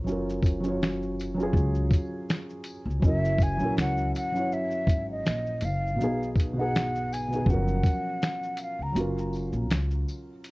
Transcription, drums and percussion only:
0.07 shaker medium
0.29 shaker soft
0.43 kick medium
0.43 closed hi-hat medium
0.43 tambourine soft
0.43 shaker soft
0.64 shaker medium
0.82 finger snap medium
0.82 snare loud
0.82 shaker medium
1.02 shaker soft
1.19 closed hi-hat medium
1.19 tambourine medium
1.19 shaker soft
1.40 shaker soft
1.53 kick medium
1.53 shaker medium
1.75 shaker soft
1.91 kick loud
1.91 closed hi-hat medium
1.91 tambourine soft
1.91 shaker medium
2.29 finger snap medium
2.29 snare loud
2.29 shaker medium
2.50 shaker soft
2.64 closed hi-hat medium
2.64 tambourine medium
2.64 shaker medium
2.90 shaker soft
3.02 kick loud
3.02 shaker medium
3.25 shaker medium
3.39 kick medium
3.39 closed hi-hat medium
3.39 tambourine soft
3.39 shaker soft
3.60 shaker medium
3.78 finger snap medium
3.78 snare loud
3.78 shaker medium
3.98 shaker soft
4.15 closed hi-hat medium
4.15 tambourine medium
4.15 shaker soft
4.36 shaker soft
4.52 shaker medium
4.71 shaker soft
4.87 kick loud
4.87 closed hi-hat medium
4.87 tambourine soft
4.87 shaker medium
5.26 finger snap medium
5.26 snare loud
5.26 shaker medium
5.46 shaker soft
5.61 closed hi-hat medium
5.61 tambourine medium
5.61 shaker soft
5.87 shaker soft
6.01 shaker medium
6.23 shaker soft
6.36 kick medium
6.36 tambourine soft
6.40 closed hi-hat medium
6.40 shaker soft
6.75 finger snap medium
6.75 snare loud
6.75 shaker medium
6.95 shaker soft
7.12 closed hi-hat medium
7.12 tambourine medium
7.12 shaker soft
7.32 shaker medium
7.46 kick medium
7.46 shaker medium
7.68 shaker soft
7.84 kick loud
7.84 closed hi-hat medium
7.84 tambourine soft
7.84 shaker soft
8.22 finger snap medium
8.22 snare loud
8.22 shaker medium
8.43 shaker soft
8.57 closed hi-hat medium
8.57 tambourine medium
8.57 shaker soft
8.96 closed hi-hat medium
8.96 shaker medium
9.18 shaker medium
9.33 tambourine soft
9.33 shaker medium
9.53 shaker soft
9.71 finger snap medium
9.71 snare loud
9.71 closed hi-hat medium
9.71 shaker medium
9.91 shaker soft
10.09 tambourine medium
10.09 shaker soft
10.44 closed hi-hat soft
10.44 shaker medium

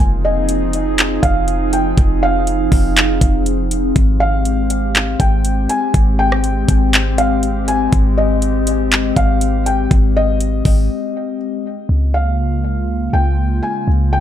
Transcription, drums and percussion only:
0.49 closed hi-hat medium
0.73 closed hi-hat medium
0.98 clap loud
0.98 closed hi-hat medium
1.23 kick loud
1.23 closed hi-hat medium
1.48 closed hi-hat medium
1.73 closed hi-hat medium
1.98 kick loud
1.98 closed hi-hat medium
2.47 closed hi-hat medium
2.72 kick medium
2.72 open hi-hat medium
2.97 clap loud
2.97 closed hi-hat medium
3.21 kick loud
3.21 closed hi-hat medium
3.46 closed hi-hat medium
3.71 closed hi-hat medium
3.96 kick loud
3.96 closed hi-hat medium
4.45 closed hi-hat medium
4.70 closed hi-hat medium
4.95 clap loud
4.95 closed hi-hat medium
5.20 kick loud
5.20 closed hi-hat medium
5.45 closed hi-hat medium
5.69 closed hi-hat medium
5.94 kick loud
5.94 closed hi-hat medium
6.32 cross-stick loud
6.44 closed hi-hat medium
6.68 kick medium
6.68 closed hi-hat medium
6.93 clap loud
6.93 closed hi-hat medium
7.18 closed hi-hat medium
7.43 closed hi-hat medium
7.68 closed hi-hat medium
7.92 kick loud
7.92 closed hi-hat medium
8.42 closed hi-hat medium
8.67 closed hi-hat medium
8.92 clap loud
8.92 closed hi-hat medium
9.16 kick loud
9.16 closed hi-hat medium
9.41 closed hi-hat medium
9.66 closed hi-hat medium
9.91 kick loud
9.91 closed hi-hat medium
10.40 closed hi-hat medium
10.65 kick medium
10.65 open hi-hat medium

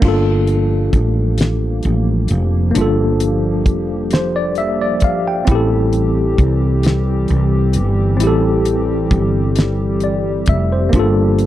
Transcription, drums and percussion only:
0.02 kick loud
0.02 crash medium
0.47 closed hi-hat medium
0.93 kick medium
0.93 closed hi-hat soft
1.38 snare loud
1.38 closed hi-hat medium
1.83 closed hi-hat medium
2.28 closed hi-hat soft
2.75 closed hi-hat medium
3.20 closed hi-hat medium
3.66 kick medium
3.66 closed hi-hat soft
4.11 snare loud
4.11 closed hi-hat medium
4.55 closed hi-hat soft
5.00 kick medium
5.00 closed hi-hat soft
5.47 kick loud
5.47 closed hi-hat medium
5.93 closed hi-hat medium
6.38 kick medium
6.38 closed hi-hat soft
6.83 snare loud
6.83 closed hi-hat medium
7.28 closed hi-hat soft
7.73 closed hi-hat soft
8.20 closed hi-hat medium
8.65 closed hi-hat medium
9.11 kick loud
9.11 closed hi-hat soft
9.56 snare loud
9.56 closed hi-hat medium
10.00 closed hi-hat soft
10.46 kick medium
10.46 closed hi-hat medium
10.93 kick loud
10.93 closed hi-hat medium
11.39 closed hi-hat medium

